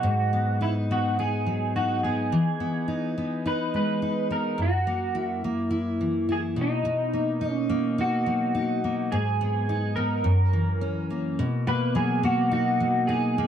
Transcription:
Already playing: steel-string acoustic guitar F#3 D#4, clean electric guitar F#4
0.03 steel-string acoustic guitar G#2
0.33 steel-string acoustic guitar B3
0.61 steel-string acoustic guitar D#4, clean electric guitar E4
0.91 steel-string acoustic guitar B3, clean electric guitar F#4
1.19 steel-string acoustic guitar D#4, clean electric guitar G#4
1.46 steel-string acoustic guitar F#3
1.76 steel-string acoustic guitar D#4, clean electric guitar F#4
2.03 steel-string acoustic guitar B3, clean electric guitar G#4
2.32 steel-string acoustic guitar E3
2.60 steel-string acoustic guitar B3
2.88 steel-string acoustic guitar D#4
3.18 steel-string acoustic guitar B3
3.46 steel-string acoustic guitar D#4, clean electric guitar B4
3.74 steel-string acoustic guitar G#3, clean electric guitar B4
4.02 steel-string acoustic guitar D#4
4.30 steel-string acoustic guitar B3, clean electric guitar A#4
4.58 steel-string acoustic guitar F#2
4.62 clean electric guitar F#4
4.87 steel-string acoustic guitar A#3
5.15 steel-string acoustic guitar E4
5.44 steel-string acoustic guitar A#3
5.71 steel-string acoustic guitar E4
6.01 steel-string acoustic guitar E3
6.29 steel-string acoustic guitar E4, clean electric guitar G#4
6.56 steel-string acoustic guitar B2
6.61 clean electric guitar D#4
6.85 steel-string acoustic guitar B2
7.13 steel-string acoustic guitar A#3
7.41 steel-string acoustic guitar D#4
7.52 clean electric guitar C#4
7.70 steel-string acoustic guitar A#3
7.98 steel-string acoustic guitar D#4, clean electric guitar F#4
8.26 steel-string acoustic guitar F#3
8.55 steel-string acoustic guitar D#4
8.84 steel-string acoustic guitar A#3
9.12 steel-string acoustic guitar G#2, clean electric guitar G#4
9.41 steel-string acoustic guitar B3
9.69 steel-string acoustic guitar D#4
9.96 steel-string acoustic guitar B3, clean electric guitar A#4
10.24 steel-string acoustic guitar F#2
10.53 steel-string acoustic guitar E3
10.81 steel-string acoustic guitar C#4
11.10 steel-string acoustic guitar A#3
11.39 steel-string acoustic guitar B2
11.67 steel-string acoustic guitar A#3, clean electric guitar B4
11.95 steel-string acoustic guitar F#3, clean electric guitar G#4
12.23 steel-string acoustic guitar A#3, clean electric guitar F#4
12.52 steel-string acoustic guitar D#4, clean electric guitar F#4
12.80 steel-string acoustic guitar F#3
13.07 steel-string acoustic guitar D#4, clean electric guitar G#4
13.38 steel-string acoustic guitar A#3

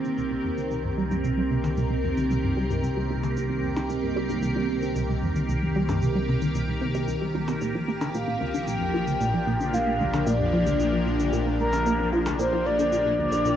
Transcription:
Already playing: synth drone C2, ambient pad D#3 A#3 C4 G4 A#4
0.05 synth arpeggio sound D#3, cabasa
0.18 synth arpeggio sound C2, cabasa
0.31 synth arpeggio sound C2
0.44 synth arpeggio sound F2
0.58 synth arpeggio sound D#3, cabasa
0.71 synth arpeggio sound C2, cabasa
0.84 synth arpeggio sound G2
0.98 synth arpeggio sound G3
1.11 synth arpeggio sound G2, cabasa
1.24 synth arpeggio sound C2, cabasa
1.37 synth arpeggio sound G3
1.51 synth arpeggio sound C3
1.64 synth arpeggio sound D#3, cabasa, percussion blips
1.77 synth arpeggio sound C2, cabasa
1.90 synth arpeggio sound C2
2.04 synth arpeggio sound F2
2.17 synth arpeggio sound D#3, cabasa
2.30 synth arpeggio sound C2, cabasa
2.44 synth arpeggio sound G2
2.57 synth arpeggio sound G3
2.70 synth arpeggio sound G2, cabasa
2.83 synth arpeggio sound C2, cabasa
2.97 synth arpeggio sound G3
3.10 synth arpeggio sound C3
3.23 synth arpeggio sound D#3, cabasa, percussion blips
3.37 synth arpeggio sound C2, cabasa
3.50 synth arpeggio sound C2
3.63 synth arpeggio sound F2
3.76 synth arpeggio sound D#3, cabasa, percussion blips
3.90 synth arpeggio sound C2, cabasa
4.03 synth arpeggio sound G2
4.16 synth arpeggio sound G3
4.29 synth arpeggio sound G2, cabasa
4.43 synth arpeggio sound C2, cabasa
4.56 synth arpeggio sound G3
4.69 synth arpeggio sound C3
4.83 synth arpeggio sound D#3, cabasa
4.96 synth arpeggio sound C2, cabasa
5.09 synth arpeggio sound C2
5.23 synth arpeggio sound F2
5.36 synth arpeggio sound D#3, cabasa
5.49 synth arpeggio sound C2, cabasa
5.62 synth arpeggio sound G2
5.76 synth arpeggio sound G3
5.89 synth arpeggio sound G2, cabasa, percussion blips
6.02 synth arpeggio sound C2, cabasa
6.15 synth arpeggio sound G3
6.29 synth arpeggio sound C3
6.42 synth arpeggio sound D#3, cabasa
6.55 synth arpeggio sound C2, cabasa
6.68 synth arpeggio sound C2
6.82 synth arpeggio sound C3
6.95 synth arpeggio sound C3, cabasa
7.08 synth arpeggio sound C2, cabasa
7.22 synth arpeggio sound G3
7.35 synth arpeggio sound C2
7.48 synth arpeggio sound C3, cabasa, percussion blips
7.61 synth drone A#1, synth arpeggio sound A#2, ambient pad F3, cabasa
7.75 synth arpeggio sound F3
7.88 synth arpeggio sound A#2
8.01 synth arpeggio sound D3, cabasa, percussion blips
8.14 synth arpeggio sound A#2, soft synth lead F5, cabasa
8.28 synth arpeggio sound A#2
8.38 synth arpeggio sound D2, ambient pad D4
8.54 synth arpeggio sound D3, cabasa
8.67 synth arpeggio sound A#2, soft synth lead G5, cabasa
8.81 synth arpeggio sound F2
8.94 synth arpeggio sound F3
9.07 synth arpeggio sound D2, cabasa
9.21 synth arpeggio sound A#2, cabasa
9.34 synth arpeggio sound F3
9.47 synth arpeggio sound A#2
9.60 synth arpeggio sound D3, cabasa
9.74 synth arpeggio sound A#2, soft synth lead F5, cabasa
9.87 synth arpeggio sound A#2
10.00 synth arpeggio sound D2
10.14 synth arpeggio sound D3, cabasa, percussion blips
10.27 synth arpeggio sound A#2, soft synth lead D5, cabasa
10.40 synth arpeggio sound F2
10.53 synth arpeggio sound F3
10.67 synth arpeggio sound D2, cabasa
10.80 synth arpeggio sound A#2, cabasa
10.93 synth arpeggio sound F3
11.06 synth arpeggio sound A#2
11.19 synth arpeggio sound D3, cabasa
11.33 synth arpeggio sound A#2, cabasa
11.46 synth arpeggio sound A#2
11.59 synth arpeggio sound D2, soft synth lead A#4
11.73 synth arpeggio sound D3, cabasa, percussion blips
11.86 synth arpeggio sound A#2, cabasa
11.99 synth arpeggio sound F2
12.13 synth arpeggio sound F3
12.26 synth arpeggio sound D2, cabasa, percussion blips
12.39 synth arpeggio sound A#2, soft synth lead C5, cabasa
12.53 synth arpeggio sound F3
12.66 synth arpeggio sound A#2, soft synth lead D5
12.79 synth arpeggio sound D3, cabasa
12.92 synth arpeggio sound A#2, cabasa
13.06 synth arpeggio sound A#2
13.19 synth arpeggio sound D2
13.32 synth arpeggio sound D3, cabasa
13.45 synth arpeggio sound A#2, cabasa

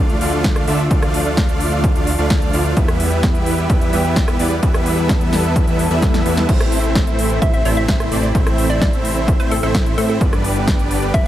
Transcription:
Already playing: analog synth bass D2, analog synth pad D3 F3 A3 F4, supersaw synth A3 D4 F4 D5 F5
0.10 closed hi-hat
0.21 analog synth bass D2, supersaw synth A3 D4 F4 D5 F5, open hi-hat
0.33 closed hi-hat
0.44 kick, snare, closed hi-hat
0.56 cross-stick, closed hi-hat
0.68 analog synth bass D2, supersaw synth A3 D4 F4 D5 E5, open hi-hat
0.79 closed hi-hat
0.91 analog synth bass D2, supersaw synth A3 D4 F4 D5 F5, kick, closed hi-hat
1.03 cross-stick, closed hi-hat
1.14 open hi-hat
1.26 closed hi-hat
1.37 kick, snare, closed hi-hat
1.49 closed hi-hat
1.60 open hi-hat
1.72 closed hi-hat
1.84 kick, closed hi-hat
1.95 analog synth bass D2, supersaw synth A3 D4 F4 D5 F5, closed hi-hat
2.07 open hi-hat
2.19 analog synth bass D2, supersaw synth A3 D4 F4 D5 F5
2.30 kick, snare, closed hi-hat
2.42 closed hi-hat
2.53 analog synth bass D2, supersaw synth A3 D4 F4 D5 F5, open hi-hat
2.65 closed hi-hat
2.77 analog synth bass E2, analog synth pad E3 G3 B3 G4, supersaw synth G3 B3 E4 B4 E5, kick, closed hi-hat
2.88 cross-stick, closed hi-hat
3.00 open hi-hat
3.12 closed hi-hat
3.23 kick, snare, closed hi-hat
3.35 closed hi-hat
3.46 open hi-hat
3.58 closed hi-hat
3.70 analog synth bass E2, supersaw synth G3 B3 E4 B4 E5, kick, closed hi-hat
3.81 closed hi-hat
3.93 analog synth bass E2, supersaw synth G3 B3 E4 B4 E5, open hi-hat
4.05 closed hi-hat
4.16 kick, snare, closed hi-hat
4.28 cross-stick, closed hi-hat
4.39 analog synth bass E2, supersaw synth G3 B3 E4 B4 D5, open hi-hat
4.51 closed hi-hat
4.63 analog synth bass E2, supersaw synth G3 B3 E4 B4 E5, analog synth pad A4, kick, closed hi-hat
4.74 cross-stick, closed hi-hat
4.86 open hi-hat
4.98 closed hi-hat
5.09 kick, snare, closed hi-hat
5.21 closed hi-hat
5.33 snare, open hi-hat
5.44 closed hi-hat
5.56 kick, closed hi-hat, swell
5.67 analog synth bass E2, supersaw synth G3 B3 E4 B4 E5, closed hi-hat
5.79 open hi-hat
5.91 analog synth bass E2, supersaw synth G3 B3 E4 B4 E5, closed hi-hat
6.02 kick, snare, closed hi-hat
6.14 snare, closed hi-hat
6.26 analog synth bass E2, supersaw synth G3 B3 E4 B4 E5, open hi-hat
6.37 snare, closed hi-hat
6.49 analog synth bass A1, analog synth pad C3 A3 E4, supersaw synth A3 C4 E4 C5 E5, kick, closed hi-hat, crash
6.60 cross-stick, closed hi-hat
6.72 open hi-hat
6.84 closed hi-hat
6.95 kick, snare, closed hi-hat
7.07 closed hi-hat
7.19 open hi-hat
7.30 closed hi-hat
7.42 analog synth bass A1, supersaw synth C4 E4, synth pluck E5, kick, closed hi-hat
7.54 synth pluck E5, closed hi-hat
7.65 analog synth bass A1, supersaw synth A3 C4 E4 C5 E5, synth pluck D5, open hi-hat
7.77 synth pluck E5, closed hi-hat
7.88 kick, snare, closed hi-hat
8.00 cross-stick, closed hi-hat
8.12 analog synth bass A1, supersaw synth A3 C4 E4 C5 D5, open hi-hat
8.23 closed hi-hat
8.35 supersaw synth A3 C4 E4 C5 E5, kick, closed hi-hat
8.47 cross-stick, closed hi-hat
8.58 open hi-hat
8.70 synth pluck D5, closed hi-hat
8.81 synth pluck D5, kick, snare, closed hi-hat
8.93 closed hi-hat
9.05 open hi-hat
9.17 closed hi-hat
9.28 kick, closed hi-hat
9.40 analog synth bass A1, supersaw synth A3 C4 E4 C5 E5, synth pluck C5, closed hi-hat
9.51 synth pluck A4, open hi-hat
9.63 analog synth bass A1, supersaw synth A3 C4 E4 C5 E5, synth pluck A4, closed hi-hat
9.74 kick, snare, closed hi-hat
9.86 closed hi-hat
9.98 analog synth bass A2, supersaw synth A3 C4 E4 C5 E5, synth pluck A4, open hi-hat
10.09 synth pluck A4, closed hi-hat
10.21 analog synth bass G1, analog synth pad D3 G3 G4, supersaw synth G3 B3 D4 B4 D5, kick, closed hi-hat
10.33 cross-stick, closed hi-hat
10.44 open hi-hat
10.67 kick, snare, closed hi-hat
10.79 closed hi-hat
10.91 open hi-hat
11.02 closed hi-hat
11.14 analog synth bass G1, supersaw synth G3 B3 D4 B4 D5, synth pluck E5, kick, closed hi-hat

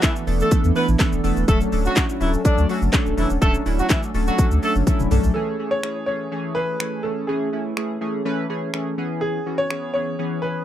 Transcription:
0.02 analog polysynth E3 A3 B3 D4 A4, horn section E3 E4, kick, snare, clap, closed hi-hat, shaker
0.16 shaker
0.27 sub bass E1, analog polysynth E3 A3 B3 D4 A4, open hi-hat, shaker
0.40 horn section A3 A4, shaker
0.51 sub bass E2, analog polysynth E3 A3 B3 D4 A4, kick, closed hi-hat, shaker
0.64 sub bass E2, shaker
0.75 analog polysynth E3 A3 B3 D4 E4, horn section B3 B4, open hi-hat, shaker
0.88 sub bass A1, shaker
0.99 analog polysynth E3 A3 B3 D4 A4, kick, snare, clap, closed hi-hat, shaker
1.13 sub bass E1, shaker
1.24 sub bass E1, analog polysynth E3 A3 B3 D4 A4, open hi-hat, shaker
1.37 sub bass D#1, shaker
1.48 sub bass D1, analog polysynth F#3 A3 C#4 D4 A4, horn section A3 A4, kick, closed hi-hat, shaker
1.61 shaker
1.72 sub bass D1, analog polysynth F#3 A3 C#4 D4 A4, open hi-hat, shaker
1.85 horn section F#3 F#4, shaker
1.96 analog polysynth F#3 A3 C#4 D4 E4, kick, snare, clap, closed hi-hat, shaker
2.09 shaker
2.20 sub bass D1, horn section E3 E4, analog polysynth F#3 A3 C#4 D4 A4, open hi-hat, shaker
2.34 shaker
2.45 sub bass D2, analog polysynth F#3 A3 C#4 D4 A4, horn section D4 D5, kick, closed hi-hat, shaker
2.58 sub bass D2, shaker
2.69 analog polysynth F#3 A3 C#4 D4 A4, horn section F#3 F#4, open hi-hat, shaker
2.82 sub bass F#1, shaker
2.93 analog polysynth F#3 A3 C#4 D4 A4, kick, snare, clap, closed hi-hat, shaker
3.06 sub bass D1, shaker
3.17 sub bass E1, horn section E3 E4, analog polysynth F#3 A3 C#4 D4 A4, open hi-hat, shaker
3.30 sub bass D#1, shaker
3.41 sub bass D1, analog polysynth F#3 A3 C#4 D4 A4, horn section A3 A4, kick, closed hi-hat, shaker
3.54 shaker
3.66 sub bass D1, analog polysynth F#3 A3 C#4 D4 E4, open hi-hat, shaker
3.79 horn section F#3 F#4, shaker
3.89 horn section E3 E4, analog polysynth F#3 A3 C#4 D4 A4, kick, snare, clap, closed hi-hat, shaker
4.03 shaker
4.14 sub bass D1, analog polysynth F#3 A3 C#4 D4 A4, open hi-hat, shaker
4.27 horn section F#3 F#4, shaker
4.38 sub bass D2, analog polysynth F#3 A3 C#4 D4 A4, kick, closed hi-hat, shaker
4.51 sub bass D2, shaker
4.62 analog polysynth F#3 A3 C#4 D4 A4, horn section A3 A4, open hi-hat, shaker
4.76 sub bass F#1, shaker
4.87 analog polysynth F#3 A3 C#4 D4 E4, kick, closed hi-hat, high tom, shaker
5.00 sub bass D1, mid tom, shaker
5.11 sub bass B1, analog polysynth F#3 A3 C#4 D4 A4, mid tom, open hi-hat, shaker
5.24 sub bass A#1, floor tom, shaker
5.34 analog polysynth E3 A3 C#4 G#4, grand piano A4
5.59 analog polysynth E3 A3 C#4 G#4
5.71 grand piano C#5
5.83 analog polysynth E3 A3 C#4 G#4, finger snap
6.06 analog polysynth E3 A3 C#4 G#4, grand piano C#5
6.32 analog polysynth E3 A3 C#4 G#4
6.55 analog polysynth E3 A3 C#4 G#4, grand piano B4
6.80 analog polysynth E3 A3 C#4 G#4, finger snap
7.03 analog polysynth E3 A3 C#4 G#4, grand piano A4
7.27 analog polysynth E3 A3 C#4 G#4, grand piano G#4
7.53 analog polysynth E3 A3 C#4 E4
7.77 analog polysynth E3 A3 C#4 G#4, finger snap
8.01 analog polysynth E3 A3 C#4 G#4
8.25 analog polysynth E3 A3 C#4 B4
8.49 analog polysynth E3 A3 C#4 G#4
8.74 analog polysynth E3 A3 C#4 G#4, finger snap
8.98 analog polysynth E3 B3 C#4 G#4
9.21 grand piano G#4
9.46 analog polysynth E3 B3 C#4 F#4
9.58 grand piano C#5
9.70 analog polysynth E3 B3 C#4 G#4, finger snap
9.94 analog polysynth E3 B3 C#4 G#4, grand piano C#5
10.19 analog polysynth E3 B3 C#4 G#4
10.42 analog polysynth E3 B3 C#4 G#4, grand piano B4

